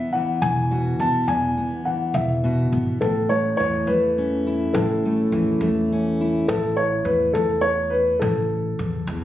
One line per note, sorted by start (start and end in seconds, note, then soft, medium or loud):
0.00 1.27 E2 medium
0.00 0.13 E3 medium
0.00 0.99 B3 medium
0.13 1.86 E3 medium
0.13 0.42 F#5 medium
0.42 0.92 E1 medium
0.42 1.01 G#5 medium
0.71 1.25 B2 medium
0.71 1.25 F#4 medium
0.99 1.12 E1 medium
0.99 1.56 B3 medium
0.99 1.26 A5 medium
1.28 1.53 E1 medium
1.28 3.02 E2 medium
1.28 1.87 G#5 medium
1.58 2.72 B3 medium
1.85 2.98 E3 soft
1.85 2.15 F#5 medium
2.14 2.65 E1 medium
2.14 2.76 E5 medium
2.44 2.98 B2 medium
2.44 2.99 F#4 medium
2.72 2.85 G#1 medium
2.72 3.02 B3 soft
3.01 3.52 A1 medium
3.01 4.75 A2 medium
3.01 3.31 A4 medium
3.29 3.89 A3 soft
3.29 3.56 C#5 medium
3.57 3.85 E2 medium
3.57 5.33 E3 medium
3.57 3.88 C#5 medium
3.87 4.64 E2 medium
3.87 5.05 A3 medium
3.87 4.77 B4 medium
4.18 5.92 C#4 medium
4.47 6.20 E4 medium
4.74 5.25 A1 medium
4.74 8.22 A2 medium
4.74 5.35 A4 medium
5.05 5.61 A3 medium
5.32 5.58 E2 medium
5.32 6.45 E3 medium
5.61 6.37 E2 medium
5.61 6.45 A3 medium
5.92 6.46 C#4 medium
6.21 8.23 E4 medium
6.48 6.99 A1 loud
6.48 6.78 A4 medium
6.77 7.04 C#5 medium
7.04 7.31 E2 medium
7.04 7.32 B4 medium
7.33 8.11 E2 medium
7.33 7.61 A4 medium
7.61 7.93 C#5 medium
7.90 8.18 B4 medium
8.19 8.73 A1 loud
8.19 9.24 A4 medium
8.79 9.05 E2 medium
9.07 9.24 E2 medium